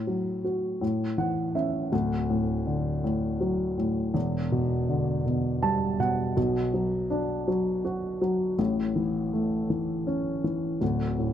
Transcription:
0.00 0.78 A2 soft
0.07 0.79 F#3 soft
0.44 0.81 F#4 soft
0.81 1.89 A2 medium
1.18 1.90 E3 soft
1.18 1.53 F#5 soft
1.55 1.91 C#4 soft
1.55 1.90 E5 medium
1.92 4.11 D1 medium
1.92 4.11 D2 medium
2.30 3.02 A2 medium
2.67 4.11 D3 soft
3.04 3.76 A2 medium
3.40 4.13 F#3 medium
3.78 4.14 A2 soft
4.14 6.33 E1 medium
4.14 6.33 E2 medium
4.52 5.24 B2 medium
4.89 6.33 D3 medium
5.26 5.98 B2 medium
5.62 6.35 G3 medium
5.62 5.97 A5 medium
6.00 6.35 B2 soft
6.00 6.34 F#5 medium
6.37 8.55 B1 medium
6.37 8.55 B2 medium
6.74 7.46 F#3 medium
7.10 8.55 D4 medium
7.48 8.20 F#3 medium
7.85 8.57 F#4 medium
8.21 8.58 F#3 medium
8.59 10.77 A1 medium
8.59 10.77 A2 medium
8.96 9.68 E3 medium
9.33 10.77 A3 soft
9.70 10.43 E3 medium
10.07 10.79 C#4 soft
10.44 10.80 E3 medium
10.81 11.33 D1 medium
10.81 11.33 D2 medium
11.18 11.33 A2 medium

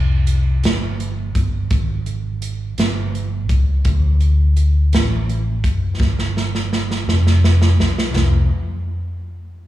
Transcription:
0.00 0.59 C2 medium
0.27 closed hi-hat medium
0.63 1.31 G1 medium
0.63 snare loud
0.63 closed hi-hat medium
1.00 closed hi-hat soft
1.35 1.68 G1 medium
1.35 kick medium
1.35 closed hi-hat medium
1.71 2.74 G#1 medium
1.71 kick loud
1.71 closed hi-hat medium
2.06 closed hi-hat soft
2.42 closed hi-hat medium
2.78 3.49 G1 medium
2.78 snare medium
2.78 closed hi-hat medium
3.15 closed hi-hat soft
3.49 3.82 C#2 medium
3.49 kick medium
3.49 closed hi-hat medium
3.85 4.95 D2 medium
3.85 kick loud
3.85 closed hi-hat medium
4.20 closed hi-hat soft
4.57 closed hi-hat medium
4.93 5.64 A1 medium
4.93 snare medium
4.93 closed hi-hat medium
5.29 closed hi-hat soft
5.64 5.97 F#1 medium
5.64 kick medium
5.64 closed hi-hat medium
6.00 7.03 G1 medium
6.00 kick medium
6.00 snare soft
6.19 snare soft
6.37 snare medium
6.55 snare soft
6.73 snare medium
6.91 snare medium
7.07 7.75 F1 medium
7.07 snare medium
7.27 snare medium
7.44 snare medium
7.62 snare medium
7.79 8.12 B1 medium
7.79 snare medium
7.98 snare medium
8.14 8.47 C2 medium
8.14 snare medium
8.14 floor tom medium

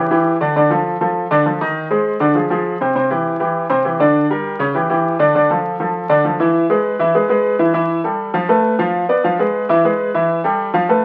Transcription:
0.11 0.35 E3 medium
0.11 0.35 E4 medium
0.11 0.35 G4 medium
0.41 0.53 D3 medium
0.41 0.53 D4 medium
0.41 0.53 D5 medium
0.56 0.68 D3 medium
0.56 0.68 D4 medium
0.56 0.68 D5 medium
0.70 0.95 F3 medium
0.70 0.95 F4 medium
0.70 0.95 A4 medium
1.01 1.25 F3 medium
1.01 1.25 F4 medium
1.01 1.25 A4 medium
1.31 1.43 D3 medium
1.31 1.43 D4 medium
1.31 1.43 D5 medium
1.46 1.58 F3 medium
1.46 1.58 F4 medium
1.46 1.58 A4 medium
1.61 1.85 D#3 medium
1.61 1.85 D#4 medium
1.61 1.85 D#5 medium
1.90 2.15 G#3 medium
1.90 2.15 G#4 medium
1.90 2.15 C5 medium
2.20 2.32 D3 medium
2.20 2.32 D4 medium
2.20 2.33 D5 medium
2.35 2.47 F3 medium
2.35 2.47 F4 medium
2.35 2.47 G#4 medium
2.50 2.75 F3 medium
2.50 2.75 F4 medium
2.50 2.75 G#4 medium
2.81 2.93 C3 medium
2.81 2.93 C4 medium
2.81 2.93 C5 medium
2.95 3.07 C3 medium
2.95 3.08 C4 medium
2.95 3.08 C5 medium
3.11 3.35 E3 medium
3.11 3.35 E4 medium
3.11 3.35 G4 medium
3.40 3.64 E3 medium
3.40 3.65 E4 medium
3.40 3.65 G4 medium
3.70 3.82 C3 medium
3.70 3.82 C4 medium
3.70 3.82 C5 medium
3.85 3.97 E3 medium
3.85 3.97 E4 medium
3.85 3.97 G4 medium
4.00 4.24 D3 medium
4.00 4.25 D4 medium
4.00 4.25 D5 medium
4.30 4.55 G3 medium
4.30 4.55 G4 medium
4.30 4.55 A#4 medium
4.59 4.72 C#3 medium
4.59 4.72 C#4 medium
4.59 4.72 C#5 medium
4.75 4.87 E3 medium
4.75 4.87 E4 medium
4.75 4.88 G4 medium
4.90 5.14 E3 medium
4.90 5.14 E4 medium
4.90 5.14 G4 medium
5.19 5.32 D3 medium
5.19 5.32 D4 medium
5.19 5.32 D5 medium
5.35 5.47 D3 medium
5.35 5.47 D4 medium
5.35 5.48 D5 medium
5.50 5.75 F3 medium
5.50 5.75 F4 medium
5.50 5.75 A4 medium
5.80 6.04 F3 medium
5.80 6.04 F4 medium
5.80 6.05 A4 medium
6.09 6.22 D3 medium
6.09 6.22 D4 medium
6.09 6.22 D5 medium
6.25 6.37 F3 medium
6.25 6.37 F4 medium
6.25 6.37 A4 medium
6.40 6.64 E3 medium
6.40 6.64 E4 medium
6.40 6.65 E5 medium
6.70 6.94 G#3 medium
6.70 6.94 G#4 medium
6.70 6.95 B4 medium
6.99 7.12 E3 medium
6.99 7.12 E4 medium
6.99 7.12 E5 medium
7.15 7.27 G#3 medium
7.15 7.27 G#4 medium
7.15 7.27 B4 medium
7.29 7.54 G#3 medium
7.29 7.54 G#4 medium
7.29 7.54 B4 medium
7.59 7.72 E3 medium
7.59 7.72 E4 medium
7.59 7.72 E5 medium
7.74 7.99 E3 medium
7.74 7.99 E4 medium
7.74 7.99 E5 medium
8.04 8.29 G3 medium
8.04 8.29 G4 medium
8.04 8.29 A4 medium
8.34 8.46 F3 medium
8.34 8.47 F4 medium
8.34 8.47 F5 medium
8.49 8.74 A3 medium
8.49 8.74 A4 medium
8.49 8.74 B4 medium
8.79 9.04 F3 medium
8.79 9.04 F4 medium
8.79 9.04 F5 medium
9.09 9.21 B3 medium
9.09 9.22 B4 medium
9.09 9.22 D5 medium
9.24 9.37 F3 medium
9.24 9.37 F4 medium
9.24 9.37 F5 medium
9.39 9.64 G#3 medium
9.39 9.64 G#4 medium
9.39 9.64 B4 medium
9.69 9.81 E3 medium
9.69 9.82 E4 medium
9.69 9.82 E5 medium
9.84 10.09 G#3 medium
9.84 10.09 G#4 medium
9.84 10.09 B4 medium
10.14 10.39 E3 medium
10.14 10.39 E4 medium
10.14 10.39 E5 medium
10.44 10.69 G3 medium
10.44 10.69 G4 medium
10.44 10.69 A4 medium
10.74 10.86 F3 medium
10.74 10.86 F4 medium
10.74 10.87 F5 medium
10.89 11.05 A3 medium
10.89 11.05 A4 medium
10.89 11.05 B4 medium

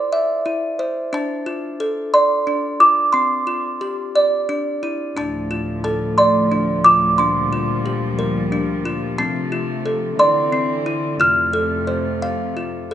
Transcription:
0.00 0.44 E4 medium
0.00 0.78 C5 medium
0.00 1.13 D5 medium
0.00 0.75 C6 medium
0.12 1.13 E5 medium
0.46 1.12 E4 medium
0.79 1.13 C5 medium
1.13 2.46 D4 medium
1.13 2.10 A5 medium
1.46 2.79 F4 medium
1.80 3.14 A4 medium
2.14 3.14 D5 medium
2.14 2.82 C6 medium
2.47 3.14 D4 medium
2.80 3.14 F4 medium
2.80 3.15 D6 medium
3.12 4.15 C4 medium
3.12 4.79 C6 medium
3.47 4.15 F4 medium
3.81 4.15 G4 medium
4.15 5.17 D5 medium
4.49 5.15 D4 medium
4.83 5.17 E4 medium
5.17 9.15 D2 medium
5.17 7.17 A2 medium
5.17 10.15 F3 medium
5.17 6.50 D4 medium
5.17 5.83 A5 medium
5.51 6.85 F4 medium
5.84 7.19 A4 medium
5.84 6.19 A5 medium
6.18 7.19 D5 medium
6.18 6.87 C6 medium
6.51 7.18 D4 medium
6.84 7.19 F4 medium
6.84 7.20 D6 medium
7.18 9.17 A#2 medium
7.18 9.17 G3 medium
7.18 8.51 D4 medium
7.18 8.81 C6 medium
7.53 8.84 F4 medium
7.86 9.18 G4 medium
8.19 9.18 A#4 medium
8.52 9.19 D4 medium
8.85 9.19 F4 medium
9.18 10.19 C3 medium
9.18 10.19 A3 medium
9.18 10.19 C4 medium
9.18 10.22 A5 medium
9.52 10.19 F4 medium
9.86 10.19 A4 medium
10.19 11.19 D3 medium
10.19 11.19 E3 medium
10.19 11.19 C4 medium
10.19 11.20 D5 medium
10.19 11.23 C6 medium
10.52 11.20 C4 medium
10.86 11.20 E4 medium
11.20 12.94 F2 medium
11.20 12.94 C3 medium
11.20 12.94 A3 medium
11.20 12.55 F4 medium
11.20 12.87 F6 medium
11.53 12.90 A4 medium
11.87 12.94 C5 medium
12.22 12.94 F5 medium
12.57 12.94 F4 medium
12.91 12.94 A4 medium

